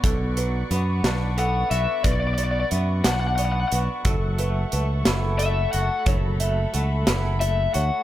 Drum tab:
HH |xxxxxx|xxxxxx|xxxxxx|xxxxxx|
SD |---o--|---o--|---o--|---o--|
BD |o-----|o-----|o-----|o-----|